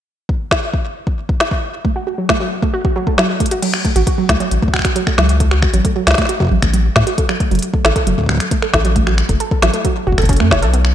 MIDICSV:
0, 0, Header, 1, 4, 480
1, 0, Start_track
1, 0, Tempo, 444444
1, 75, Time_signature, 4, 2, 24, 8
1, 11822, End_track
2, 0, Start_track
2, 0, Title_t, "Synth arpeggio sound"
2, 0, Program_c, 0, 84
2, 1994, Note_on_c, 0, 57, 75
2, 2041, Note_off_c, 0, 57, 0
2, 2114, Note_on_c, 0, 66, 103
2, 2161, Note_off_c, 0, 66, 0
2, 2234, Note_on_c, 0, 66, 75
2, 2313, Note_off_c, 0, 66, 0
2, 2354, Note_on_c, 0, 54, 97
2, 2468, Note_off_c, 0, 54, 0
2, 2474, Note_on_c, 0, 57, 77
2, 2553, Note_off_c, 0, 57, 0
2, 2594, Note_on_c, 0, 54, 100
2, 2708, Note_off_c, 0, 54, 0
2, 2834, Note_on_c, 0, 57, 75
2, 2881, Note_off_c, 0, 57, 0
2, 2954, Note_on_c, 0, 66, 101
2, 3001, Note_off_c, 0, 66, 0
2, 3074, Note_on_c, 0, 66, 74
2, 3153, Note_off_c, 0, 66, 0
2, 3195, Note_on_c, 0, 54, 94
2, 3308, Note_off_c, 0, 54, 0
2, 3314, Note_on_c, 0, 57, 75
2, 3393, Note_off_c, 0, 57, 0
2, 3435, Note_on_c, 0, 54, 99
2, 3548, Note_off_c, 0, 54, 0
2, 3675, Note_on_c, 0, 57, 75
2, 3722, Note_off_c, 0, 57, 0
2, 3795, Note_on_c, 0, 66, 99
2, 3842, Note_off_c, 0, 66, 0
2, 3914, Note_on_c, 0, 54, 93
2, 4028, Note_off_c, 0, 54, 0
2, 4155, Note_on_c, 0, 57, 75
2, 4202, Note_off_c, 0, 57, 0
2, 4274, Note_on_c, 0, 66, 102
2, 4321, Note_off_c, 0, 66, 0
2, 4394, Note_on_c, 0, 66, 82
2, 4473, Note_off_c, 0, 66, 0
2, 4514, Note_on_c, 0, 54, 100
2, 4628, Note_off_c, 0, 54, 0
2, 4634, Note_on_c, 0, 57, 74
2, 4713, Note_off_c, 0, 57, 0
2, 4754, Note_on_c, 0, 54, 103
2, 4868, Note_off_c, 0, 54, 0
2, 4994, Note_on_c, 0, 57, 74
2, 5041, Note_off_c, 0, 57, 0
2, 5114, Note_on_c, 0, 66, 95
2, 5161, Note_off_c, 0, 66, 0
2, 5234, Note_on_c, 0, 66, 76
2, 5313, Note_off_c, 0, 66, 0
2, 5354, Note_on_c, 0, 54, 98
2, 5468, Note_off_c, 0, 54, 0
2, 5474, Note_on_c, 0, 57, 75
2, 5553, Note_off_c, 0, 57, 0
2, 5594, Note_on_c, 0, 54, 101
2, 5708, Note_off_c, 0, 54, 0
2, 5834, Note_on_c, 0, 57, 78
2, 5881, Note_off_c, 0, 57, 0
2, 5954, Note_on_c, 0, 66, 100
2, 6001, Note_off_c, 0, 66, 0
2, 6074, Note_on_c, 0, 66, 70
2, 6153, Note_off_c, 0, 66, 0
2, 6194, Note_on_c, 0, 54, 98
2, 6308, Note_off_c, 0, 54, 0
2, 6314, Note_on_c, 0, 57, 81
2, 6393, Note_off_c, 0, 57, 0
2, 6434, Note_on_c, 0, 54, 103
2, 6548, Note_off_c, 0, 54, 0
2, 6674, Note_on_c, 0, 57, 76
2, 6721, Note_off_c, 0, 57, 0
2, 6794, Note_on_c, 0, 66, 100
2, 6841, Note_off_c, 0, 66, 0
2, 6914, Note_on_c, 0, 66, 75
2, 6993, Note_off_c, 0, 66, 0
2, 7034, Note_on_c, 0, 54, 94
2, 7148, Note_off_c, 0, 54, 0
2, 7154, Note_on_c, 0, 57, 78
2, 7233, Note_off_c, 0, 57, 0
2, 7274, Note_on_c, 0, 54, 97
2, 7388, Note_off_c, 0, 54, 0
2, 7514, Note_on_c, 0, 57, 76
2, 7561, Note_off_c, 0, 57, 0
2, 7634, Note_on_c, 0, 66, 92
2, 7681, Note_off_c, 0, 66, 0
2, 7754, Note_on_c, 0, 69, 80
2, 7833, Note_off_c, 0, 69, 0
2, 7874, Note_on_c, 0, 54, 102
2, 7988, Note_off_c, 0, 54, 0
2, 7994, Note_on_c, 0, 57, 71
2, 8073, Note_off_c, 0, 57, 0
2, 8114, Note_on_c, 0, 54, 101
2, 8228, Note_off_c, 0, 54, 0
2, 8354, Note_on_c, 0, 57, 74
2, 8401, Note_off_c, 0, 57, 0
2, 8474, Note_on_c, 0, 69, 99
2, 8521, Note_off_c, 0, 69, 0
2, 8594, Note_on_c, 0, 69, 79
2, 8673, Note_off_c, 0, 69, 0
2, 8714, Note_on_c, 0, 54, 96
2, 8828, Note_off_c, 0, 54, 0
2, 8833, Note_on_c, 0, 57, 76
2, 8912, Note_off_c, 0, 57, 0
2, 8953, Note_on_c, 0, 54, 98
2, 9068, Note_off_c, 0, 54, 0
2, 9194, Note_on_c, 0, 57, 81
2, 9241, Note_off_c, 0, 57, 0
2, 9314, Note_on_c, 0, 69, 98
2, 9361, Note_off_c, 0, 69, 0
2, 9434, Note_on_c, 0, 69, 75
2, 9513, Note_off_c, 0, 69, 0
2, 9554, Note_on_c, 0, 54, 96
2, 9668, Note_off_c, 0, 54, 0
2, 9674, Note_on_c, 0, 57, 79
2, 9753, Note_off_c, 0, 57, 0
2, 9794, Note_on_c, 0, 54, 104
2, 9908, Note_off_c, 0, 54, 0
2, 10034, Note_on_c, 0, 57, 77
2, 10081, Note_off_c, 0, 57, 0
2, 10154, Note_on_c, 0, 69, 100
2, 10201, Note_off_c, 0, 69, 0
2, 10274, Note_on_c, 0, 69, 73
2, 10353, Note_off_c, 0, 69, 0
2, 10394, Note_on_c, 0, 54, 100
2, 10508, Note_off_c, 0, 54, 0
2, 10514, Note_on_c, 0, 57, 79
2, 10593, Note_off_c, 0, 57, 0
2, 10634, Note_on_c, 0, 54, 99
2, 10748, Note_off_c, 0, 54, 0
2, 10874, Note_on_c, 0, 66, 98
2, 10988, Note_off_c, 0, 66, 0
2, 10994, Note_on_c, 0, 69, 77
2, 11073, Note_off_c, 0, 69, 0
2, 11114, Note_on_c, 0, 61, 97
2, 11193, Note_off_c, 0, 61, 0
2, 11234, Note_on_c, 0, 57, 96
2, 11348, Note_off_c, 0, 57, 0
2, 11354, Note_on_c, 0, 73, 99
2, 11468, Note_off_c, 0, 73, 0
2, 11474, Note_on_c, 0, 69, 96
2, 11521, Note_off_c, 0, 69, 0
2, 11594, Note_on_c, 0, 59, 80
2, 11641, Note_off_c, 0, 59, 0
2, 11822, End_track
3, 0, Start_track
3, 0, Title_t, "Analog synth bass"
3, 0, Program_c, 1, 38
3, 4275, Note_on_c, 1, 33, 97
3, 4350, Note_off_c, 1, 33, 0
3, 4635, Note_on_c, 1, 37, 87
3, 4710, Note_off_c, 1, 37, 0
3, 4875, Note_on_c, 1, 33, 77
3, 4950, Note_off_c, 1, 33, 0
3, 5594, Note_on_c, 1, 37, 88
3, 6123, Note_off_c, 1, 37, 0
3, 6195, Note_on_c, 1, 33, 99
3, 6270, Note_off_c, 1, 33, 0
3, 6555, Note_on_c, 1, 37, 90
3, 6630, Note_off_c, 1, 37, 0
3, 7034, Note_on_c, 1, 33, 95
3, 7110, Note_off_c, 1, 33, 0
3, 7154, Note_on_c, 1, 33, 94
3, 7443, Note_off_c, 1, 33, 0
3, 7514, Note_on_c, 1, 45, 94
3, 7590, Note_off_c, 1, 45, 0
3, 8114, Note_on_c, 1, 30, 101
3, 8190, Note_off_c, 1, 30, 0
3, 8474, Note_on_c, 1, 33, 92
3, 8550, Note_off_c, 1, 33, 0
3, 8715, Note_on_c, 1, 30, 80
3, 8790, Note_off_c, 1, 30, 0
3, 9434, Note_on_c, 1, 33, 89
3, 9963, Note_off_c, 1, 33, 0
3, 10034, Note_on_c, 1, 30, 95
3, 10110, Note_off_c, 1, 30, 0
3, 10394, Note_on_c, 1, 33, 90
3, 10470, Note_off_c, 1, 33, 0
3, 10875, Note_on_c, 1, 30, 94
3, 10950, Note_off_c, 1, 30, 0
3, 10994, Note_on_c, 1, 30, 91
3, 11234, Note_on_c, 1, 42, 80
3, 11250, Note_off_c, 1, 30, 0
3, 11354, Note_on_c, 1, 28, 86
3, 11371, Note_off_c, 1, 42, 0
3, 11474, Note_on_c, 1, 35, 97
3, 11490, Note_off_c, 1, 28, 0
3, 11822, Note_off_c, 1, 35, 0
3, 11822, End_track
4, 0, Start_track
4, 0, Title_t, "Drums"
4, 314, Note_on_c, 9, 36, 91
4, 422, Note_off_c, 9, 36, 0
4, 554, Note_on_c, 9, 36, 105
4, 554, Note_on_c, 9, 38, 104
4, 662, Note_off_c, 9, 36, 0
4, 662, Note_off_c, 9, 38, 0
4, 794, Note_on_c, 9, 36, 102
4, 902, Note_off_c, 9, 36, 0
4, 1154, Note_on_c, 9, 36, 97
4, 1262, Note_off_c, 9, 36, 0
4, 1394, Note_on_c, 9, 36, 108
4, 1502, Note_off_c, 9, 36, 0
4, 1514, Note_on_c, 9, 38, 106
4, 1622, Note_off_c, 9, 38, 0
4, 1634, Note_on_c, 9, 36, 94
4, 1742, Note_off_c, 9, 36, 0
4, 1994, Note_on_c, 9, 36, 100
4, 2102, Note_off_c, 9, 36, 0
4, 2474, Note_on_c, 9, 36, 103
4, 2474, Note_on_c, 9, 38, 112
4, 2582, Note_off_c, 9, 36, 0
4, 2582, Note_off_c, 9, 38, 0
4, 2835, Note_on_c, 9, 36, 99
4, 2943, Note_off_c, 9, 36, 0
4, 3075, Note_on_c, 9, 36, 118
4, 3183, Note_off_c, 9, 36, 0
4, 3315, Note_on_c, 9, 36, 99
4, 3423, Note_off_c, 9, 36, 0
4, 3435, Note_on_c, 9, 38, 115
4, 3543, Note_off_c, 9, 38, 0
4, 3674, Note_on_c, 9, 42, 53
4, 3675, Note_on_c, 9, 36, 100
4, 3735, Note_off_c, 9, 42, 0
4, 3735, Note_on_c, 9, 42, 64
4, 3783, Note_off_c, 9, 36, 0
4, 3795, Note_off_c, 9, 42, 0
4, 3795, Note_on_c, 9, 42, 71
4, 3903, Note_off_c, 9, 42, 0
4, 3915, Note_on_c, 9, 42, 66
4, 3915, Note_on_c, 9, 49, 89
4, 4023, Note_off_c, 9, 42, 0
4, 4023, Note_off_c, 9, 49, 0
4, 4035, Note_on_c, 9, 26, 60
4, 4143, Note_off_c, 9, 26, 0
4, 4155, Note_on_c, 9, 36, 100
4, 4155, Note_on_c, 9, 42, 37
4, 4263, Note_off_c, 9, 36, 0
4, 4263, Note_off_c, 9, 42, 0
4, 4275, Note_on_c, 9, 42, 54
4, 4383, Note_off_c, 9, 42, 0
4, 4395, Note_on_c, 9, 36, 109
4, 4395, Note_on_c, 9, 42, 65
4, 4503, Note_off_c, 9, 36, 0
4, 4503, Note_off_c, 9, 42, 0
4, 4635, Note_on_c, 9, 26, 51
4, 4635, Note_on_c, 9, 36, 104
4, 4635, Note_on_c, 9, 38, 109
4, 4635, Note_on_c, 9, 42, 58
4, 4743, Note_off_c, 9, 26, 0
4, 4743, Note_off_c, 9, 36, 0
4, 4743, Note_off_c, 9, 38, 0
4, 4743, Note_off_c, 9, 42, 0
4, 4755, Note_on_c, 9, 42, 51
4, 4863, Note_off_c, 9, 42, 0
4, 4875, Note_on_c, 9, 42, 66
4, 4983, Note_off_c, 9, 42, 0
4, 4995, Note_on_c, 9, 36, 98
4, 5055, Note_off_c, 9, 36, 0
4, 5055, Note_on_c, 9, 36, 80
4, 5115, Note_off_c, 9, 36, 0
4, 5115, Note_on_c, 9, 26, 74
4, 5115, Note_on_c, 9, 36, 67
4, 5145, Note_off_c, 9, 26, 0
4, 5145, Note_on_c, 9, 26, 57
4, 5175, Note_off_c, 9, 26, 0
4, 5175, Note_off_c, 9, 36, 0
4, 5175, Note_on_c, 9, 26, 49
4, 5175, Note_on_c, 9, 36, 53
4, 5205, Note_off_c, 9, 26, 0
4, 5205, Note_on_c, 9, 26, 39
4, 5235, Note_off_c, 9, 26, 0
4, 5235, Note_off_c, 9, 36, 0
4, 5235, Note_on_c, 9, 26, 60
4, 5235, Note_on_c, 9, 36, 117
4, 5235, Note_on_c, 9, 42, 52
4, 5343, Note_off_c, 9, 26, 0
4, 5343, Note_off_c, 9, 36, 0
4, 5343, Note_off_c, 9, 42, 0
4, 5355, Note_on_c, 9, 42, 64
4, 5463, Note_off_c, 9, 42, 0
4, 5475, Note_on_c, 9, 26, 52
4, 5475, Note_on_c, 9, 36, 99
4, 5583, Note_off_c, 9, 26, 0
4, 5583, Note_off_c, 9, 36, 0
4, 5595, Note_on_c, 9, 38, 112
4, 5703, Note_off_c, 9, 38, 0
4, 5715, Note_on_c, 9, 42, 55
4, 5823, Note_off_c, 9, 42, 0
4, 5834, Note_on_c, 9, 36, 107
4, 5834, Note_on_c, 9, 42, 65
4, 5942, Note_off_c, 9, 36, 0
4, 5942, Note_off_c, 9, 42, 0
4, 5955, Note_on_c, 9, 26, 59
4, 6063, Note_off_c, 9, 26, 0
4, 6074, Note_on_c, 9, 36, 119
4, 6075, Note_on_c, 9, 26, 58
4, 6182, Note_off_c, 9, 36, 0
4, 6183, Note_off_c, 9, 26, 0
4, 6195, Note_on_c, 9, 42, 54
4, 6303, Note_off_c, 9, 42, 0
4, 6314, Note_on_c, 9, 36, 103
4, 6315, Note_on_c, 9, 42, 62
4, 6422, Note_off_c, 9, 36, 0
4, 6423, Note_off_c, 9, 42, 0
4, 6555, Note_on_c, 9, 26, 49
4, 6555, Note_on_c, 9, 38, 108
4, 6555, Note_on_c, 9, 42, 62
4, 6594, Note_off_c, 9, 38, 0
4, 6594, Note_on_c, 9, 38, 86
4, 6635, Note_off_c, 9, 38, 0
4, 6635, Note_on_c, 9, 38, 74
4, 6663, Note_off_c, 9, 26, 0
4, 6663, Note_off_c, 9, 42, 0
4, 6674, Note_on_c, 9, 36, 100
4, 6675, Note_off_c, 9, 38, 0
4, 6675, Note_on_c, 9, 38, 57
4, 6675, Note_on_c, 9, 42, 49
4, 6714, Note_off_c, 9, 38, 0
4, 6714, Note_on_c, 9, 38, 47
4, 6754, Note_off_c, 9, 38, 0
4, 6754, Note_on_c, 9, 38, 40
4, 6782, Note_off_c, 9, 36, 0
4, 6783, Note_off_c, 9, 42, 0
4, 6794, Note_on_c, 9, 42, 63
4, 6862, Note_off_c, 9, 38, 0
4, 6902, Note_off_c, 9, 42, 0
4, 6914, Note_on_c, 9, 36, 112
4, 6938, Note_off_c, 9, 36, 0
4, 6938, Note_on_c, 9, 36, 96
4, 6962, Note_off_c, 9, 36, 0
4, 6962, Note_on_c, 9, 36, 78
4, 6986, Note_off_c, 9, 36, 0
4, 6986, Note_on_c, 9, 36, 64
4, 7010, Note_off_c, 9, 36, 0
4, 7010, Note_on_c, 9, 36, 52
4, 7118, Note_off_c, 9, 36, 0
4, 7154, Note_on_c, 9, 26, 61
4, 7154, Note_on_c, 9, 36, 106
4, 7154, Note_on_c, 9, 42, 53
4, 7262, Note_off_c, 9, 26, 0
4, 7262, Note_off_c, 9, 36, 0
4, 7262, Note_off_c, 9, 42, 0
4, 7274, Note_on_c, 9, 42, 65
4, 7382, Note_off_c, 9, 42, 0
4, 7514, Note_on_c, 9, 36, 98
4, 7514, Note_on_c, 9, 38, 118
4, 7622, Note_off_c, 9, 36, 0
4, 7622, Note_off_c, 9, 38, 0
4, 7634, Note_on_c, 9, 42, 53
4, 7742, Note_off_c, 9, 42, 0
4, 7754, Note_on_c, 9, 36, 123
4, 7754, Note_on_c, 9, 42, 65
4, 7862, Note_off_c, 9, 36, 0
4, 7862, Note_off_c, 9, 42, 0
4, 7874, Note_on_c, 9, 26, 60
4, 7982, Note_off_c, 9, 26, 0
4, 7994, Note_on_c, 9, 36, 105
4, 7994, Note_on_c, 9, 42, 36
4, 8102, Note_off_c, 9, 36, 0
4, 8102, Note_off_c, 9, 42, 0
4, 8114, Note_on_c, 9, 42, 24
4, 8154, Note_off_c, 9, 42, 0
4, 8154, Note_on_c, 9, 42, 33
4, 8195, Note_off_c, 9, 42, 0
4, 8195, Note_on_c, 9, 42, 42
4, 8234, Note_off_c, 9, 42, 0
4, 8234, Note_on_c, 9, 42, 60
4, 8342, Note_off_c, 9, 42, 0
4, 8354, Note_on_c, 9, 36, 108
4, 8462, Note_off_c, 9, 36, 0
4, 8474, Note_on_c, 9, 26, 49
4, 8474, Note_on_c, 9, 38, 120
4, 8474, Note_on_c, 9, 42, 58
4, 8582, Note_off_c, 9, 26, 0
4, 8582, Note_off_c, 9, 38, 0
4, 8582, Note_off_c, 9, 42, 0
4, 8594, Note_on_c, 9, 36, 113
4, 8594, Note_on_c, 9, 42, 49
4, 8702, Note_off_c, 9, 36, 0
4, 8702, Note_off_c, 9, 42, 0
4, 8714, Note_on_c, 9, 42, 64
4, 8822, Note_off_c, 9, 42, 0
4, 8834, Note_on_c, 9, 36, 50
4, 8864, Note_off_c, 9, 36, 0
4, 8864, Note_on_c, 9, 36, 53
4, 8894, Note_off_c, 9, 36, 0
4, 8894, Note_on_c, 9, 36, 62
4, 8924, Note_off_c, 9, 36, 0
4, 8924, Note_on_c, 9, 36, 70
4, 8954, Note_off_c, 9, 36, 0
4, 8954, Note_on_c, 9, 26, 70
4, 8954, Note_on_c, 9, 36, 76
4, 8984, Note_off_c, 9, 36, 0
4, 8984, Note_on_c, 9, 36, 84
4, 9014, Note_off_c, 9, 36, 0
4, 9014, Note_on_c, 9, 36, 87
4, 9044, Note_off_c, 9, 36, 0
4, 9044, Note_on_c, 9, 36, 93
4, 9062, Note_off_c, 9, 26, 0
4, 9075, Note_on_c, 9, 26, 58
4, 9075, Note_on_c, 9, 42, 53
4, 9152, Note_off_c, 9, 36, 0
4, 9183, Note_off_c, 9, 26, 0
4, 9183, Note_off_c, 9, 42, 0
4, 9194, Note_on_c, 9, 36, 109
4, 9195, Note_on_c, 9, 42, 64
4, 9302, Note_off_c, 9, 36, 0
4, 9303, Note_off_c, 9, 42, 0
4, 9314, Note_on_c, 9, 26, 47
4, 9422, Note_off_c, 9, 26, 0
4, 9434, Note_on_c, 9, 36, 115
4, 9434, Note_on_c, 9, 38, 120
4, 9542, Note_off_c, 9, 36, 0
4, 9542, Note_off_c, 9, 38, 0
4, 9555, Note_on_c, 9, 42, 53
4, 9663, Note_off_c, 9, 42, 0
4, 9674, Note_on_c, 9, 36, 106
4, 9675, Note_on_c, 9, 42, 61
4, 9782, Note_off_c, 9, 36, 0
4, 9783, Note_off_c, 9, 42, 0
4, 9795, Note_on_c, 9, 26, 54
4, 9903, Note_off_c, 9, 26, 0
4, 9914, Note_on_c, 9, 26, 56
4, 9914, Note_on_c, 9, 42, 34
4, 10022, Note_off_c, 9, 26, 0
4, 10022, Note_off_c, 9, 42, 0
4, 10034, Note_on_c, 9, 36, 102
4, 10034, Note_on_c, 9, 42, 51
4, 10142, Note_off_c, 9, 36, 0
4, 10142, Note_off_c, 9, 42, 0
4, 10154, Note_on_c, 9, 42, 61
4, 10262, Note_off_c, 9, 42, 0
4, 10274, Note_on_c, 9, 36, 118
4, 10382, Note_off_c, 9, 36, 0
4, 10394, Note_on_c, 9, 26, 47
4, 10394, Note_on_c, 9, 38, 113
4, 10394, Note_on_c, 9, 42, 57
4, 10502, Note_off_c, 9, 26, 0
4, 10502, Note_off_c, 9, 38, 0
4, 10502, Note_off_c, 9, 42, 0
4, 10514, Note_on_c, 9, 42, 48
4, 10622, Note_off_c, 9, 42, 0
4, 10634, Note_on_c, 9, 36, 108
4, 10634, Note_on_c, 9, 42, 59
4, 10742, Note_off_c, 9, 36, 0
4, 10742, Note_off_c, 9, 42, 0
4, 10874, Note_on_c, 9, 36, 48
4, 10934, Note_off_c, 9, 36, 0
4, 10934, Note_on_c, 9, 36, 61
4, 10994, Note_off_c, 9, 36, 0
4, 10994, Note_on_c, 9, 26, 56
4, 10994, Note_on_c, 9, 36, 74
4, 10994, Note_on_c, 9, 42, 23
4, 11034, Note_off_c, 9, 42, 0
4, 11034, Note_on_c, 9, 42, 26
4, 11054, Note_off_c, 9, 36, 0
4, 11054, Note_on_c, 9, 36, 86
4, 11074, Note_off_c, 9, 42, 0
4, 11074, Note_on_c, 9, 42, 31
4, 11102, Note_off_c, 9, 26, 0
4, 11114, Note_off_c, 9, 36, 0
4, 11114, Note_off_c, 9, 42, 0
4, 11114, Note_on_c, 9, 36, 119
4, 11114, Note_on_c, 9, 42, 60
4, 11154, Note_off_c, 9, 42, 0
4, 11154, Note_on_c, 9, 42, 37
4, 11194, Note_off_c, 9, 42, 0
4, 11194, Note_on_c, 9, 42, 43
4, 11222, Note_off_c, 9, 36, 0
4, 11234, Note_on_c, 9, 26, 47
4, 11302, Note_off_c, 9, 42, 0
4, 11342, Note_off_c, 9, 26, 0
4, 11354, Note_on_c, 9, 36, 98
4, 11354, Note_on_c, 9, 38, 115
4, 11462, Note_off_c, 9, 36, 0
4, 11462, Note_off_c, 9, 38, 0
4, 11475, Note_on_c, 9, 42, 51
4, 11583, Note_off_c, 9, 42, 0
4, 11594, Note_on_c, 9, 42, 60
4, 11702, Note_off_c, 9, 42, 0
4, 11714, Note_on_c, 9, 26, 55
4, 11822, Note_off_c, 9, 26, 0
4, 11822, End_track
0, 0, End_of_file